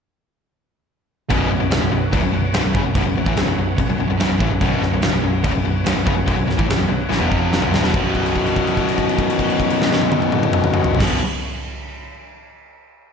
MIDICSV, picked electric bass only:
0, 0, Header, 1, 2, 480
1, 0, Start_track
1, 0, Tempo, 414079
1, 1509, Time_signature, 4, 2, 24, 8
1, 15218, End_track
2, 0, Start_track
2, 0, Title_t, "Picked electric bass"
2, 0, Program_c, 0, 34
2, 1505, Note_on_c, 0, 23, 89
2, 1729, Note_off_c, 0, 23, 0
2, 1752, Note_on_c, 0, 23, 81
2, 1862, Note_off_c, 0, 23, 0
2, 1867, Note_on_c, 0, 23, 80
2, 1979, Note_off_c, 0, 23, 0
2, 1995, Note_on_c, 0, 23, 84
2, 2096, Note_off_c, 0, 23, 0
2, 2103, Note_on_c, 0, 23, 83
2, 2216, Note_off_c, 0, 23, 0
2, 2223, Note_on_c, 0, 23, 69
2, 2447, Note_off_c, 0, 23, 0
2, 2466, Note_on_c, 0, 26, 96
2, 2577, Note_off_c, 0, 26, 0
2, 2587, Note_on_c, 0, 23, 67
2, 2698, Note_off_c, 0, 23, 0
2, 2702, Note_on_c, 0, 23, 71
2, 2926, Note_off_c, 0, 23, 0
2, 2947, Note_on_c, 0, 23, 84
2, 3048, Note_off_c, 0, 23, 0
2, 3054, Note_on_c, 0, 23, 78
2, 3170, Note_off_c, 0, 23, 0
2, 3183, Note_on_c, 0, 30, 99
2, 3289, Note_off_c, 0, 30, 0
2, 3296, Note_on_c, 0, 23, 75
2, 3411, Note_off_c, 0, 23, 0
2, 3421, Note_on_c, 0, 23, 101
2, 3522, Note_off_c, 0, 23, 0
2, 3529, Note_on_c, 0, 23, 80
2, 3647, Note_off_c, 0, 23, 0
2, 3652, Note_on_c, 0, 23, 84
2, 3769, Note_off_c, 0, 23, 0
2, 3784, Note_on_c, 0, 33, 95
2, 3882, Note_off_c, 0, 33, 0
2, 3889, Note_on_c, 0, 23, 91
2, 4000, Note_off_c, 0, 23, 0
2, 4007, Note_on_c, 0, 23, 73
2, 4117, Note_off_c, 0, 23, 0
2, 4124, Note_on_c, 0, 23, 78
2, 4356, Note_off_c, 0, 23, 0
2, 4384, Note_on_c, 0, 23, 81
2, 4490, Note_off_c, 0, 23, 0
2, 4497, Note_on_c, 0, 23, 75
2, 4612, Note_off_c, 0, 23, 0
2, 4619, Note_on_c, 0, 23, 76
2, 4733, Note_off_c, 0, 23, 0
2, 4740, Note_on_c, 0, 23, 73
2, 4853, Note_off_c, 0, 23, 0
2, 4862, Note_on_c, 0, 23, 94
2, 4966, Note_off_c, 0, 23, 0
2, 4973, Note_on_c, 0, 23, 88
2, 5090, Note_off_c, 0, 23, 0
2, 5106, Note_on_c, 0, 33, 91
2, 5201, Note_off_c, 0, 33, 0
2, 5208, Note_on_c, 0, 23, 75
2, 5327, Note_off_c, 0, 23, 0
2, 5347, Note_on_c, 0, 23, 92
2, 5569, Note_off_c, 0, 23, 0
2, 5575, Note_on_c, 0, 23, 97
2, 5691, Note_off_c, 0, 23, 0
2, 5701, Note_on_c, 0, 23, 89
2, 5815, Note_off_c, 0, 23, 0
2, 5825, Note_on_c, 0, 23, 80
2, 5931, Note_off_c, 0, 23, 0
2, 5938, Note_on_c, 0, 23, 90
2, 6046, Note_off_c, 0, 23, 0
2, 6053, Note_on_c, 0, 23, 74
2, 6283, Note_off_c, 0, 23, 0
2, 6309, Note_on_c, 0, 26, 87
2, 6420, Note_off_c, 0, 26, 0
2, 6433, Note_on_c, 0, 23, 75
2, 6536, Note_off_c, 0, 23, 0
2, 6543, Note_on_c, 0, 23, 71
2, 6769, Note_off_c, 0, 23, 0
2, 6789, Note_on_c, 0, 23, 88
2, 6900, Note_off_c, 0, 23, 0
2, 6907, Note_on_c, 0, 23, 77
2, 7020, Note_off_c, 0, 23, 0
2, 7036, Note_on_c, 0, 30, 83
2, 7143, Note_off_c, 0, 30, 0
2, 7149, Note_on_c, 0, 23, 77
2, 7262, Note_off_c, 0, 23, 0
2, 7278, Note_on_c, 0, 23, 96
2, 7387, Note_off_c, 0, 23, 0
2, 7391, Note_on_c, 0, 23, 73
2, 7503, Note_off_c, 0, 23, 0
2, 7508, Note_on_c, 0, 23, 87
2, 7622, Note_off_c, 0, 23, 0
2, 7642, Note_on_c, 0, 33, 98
2, 7749, Note_off_c, 0, 33, 0
2, 7758, Note_on_c, 0, 23, 84
2, 7862, Note_off_c, 0, 23, 0
2, 7869, Note_on_c, 0, 23, 82
2, 7978, Note_off_c, 0, 23, 0
2, 7985, Note_on_c, 0, 23, 77
2, 8213, Note_off_c, 0, 23, 0
2, 8222, Note_on_c, 0, 33, 83
2, 8340, Note_off_c, 0, 33, 0
2, 8351, Note_on_c, 0, 28, 82
2, 8464, Note_off_c, 0, 28, 0
2, 8479, Note_on_c, 0, 29, 80
2, 8813, Note_off_c, 0, 29, 0
2, 8828, Note_on_c, 0, 23, 100
2, 8944, Note_off_c, 0, 23, 0
2, 8964, Note_on_c, 0, 26, 90
2, 9072, Note_off_c, 0, 26, 0
2, 9080, Note_on_c, 0, 28, 88
2, 9191, Note_off_c, 0, 28, 0
2, 9206, Note_on_c, 0, 23, 100
2, 12652, Note_off_c, 0, 23, 0
2, 12755, Note_on_c, 0, 23, 96
2, 12954, Note_off_c, 0, 23, 0
2, 15218, End_track
0, 0, End_of_file